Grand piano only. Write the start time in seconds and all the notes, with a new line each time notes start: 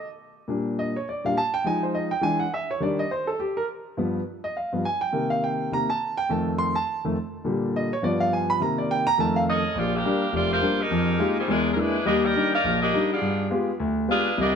0.48 A#2 G3 D4
0.79 D#5
0.96 C#5
1.09 D5
1.25 A#2 G3 D4 F5
1.37 A5
1.54 G5
1.64 F3 G#3 D#4 G#5
1.83 C5
1.95 D#5
2.11 G5
2.21 E3 G#3 D4 G#5
2.40 F#5
2.54 E5
2.71 C#5
2.80 D#3 G3 D4 D5
2.99 D#5
3.11 C5
3.27 A4
3.40 G4
3.57 A#4
3.97 G2 F3 B3
4.44 D#5
4.57 F5
4.72 G2 F3 B3
4.85 G#5
5.01 G5
5.12 C3 D#3 A#3
5.30 F5
5.44 G5
5.72 C3 D#3 A#3 A#5
5.90 A5
6.17 G5
6.29 F2 D#3 A3 A5
6.58 C6
6.75 A5
7.05 F2 D#3 A3
7.44 A#2 D3 G3
7.76 D#5
7.93 C#5
8.02 G2 F3 B3 D5
8.20 F5
8.33 G#5
8.50 B5
8.60 C3 D#3 A#3 A#5
8.78 D5
8.91 G5
9.07 A#5
9.18 F2 D#3 A3 A5
9.36 F5
9.75 A#1
10.05 G3 A#3 D4
10.33 F1
10.62 G3 A#3 D4
10.91 F2
11.19 G#3 A#3 D#4 F4 G4
11.48 E2 G#3
11.76 G#3 A#3 D4 E4
12.05 D#2 G3
12.34 G3 D4 D#4
12.64 A#1
12.93 G3 D4 D#4
13.21 G2
13.51 G#3 B3 F4 G4
13.80 D2
14.08 G#3 B3 F4 G4
14.38 C2 C3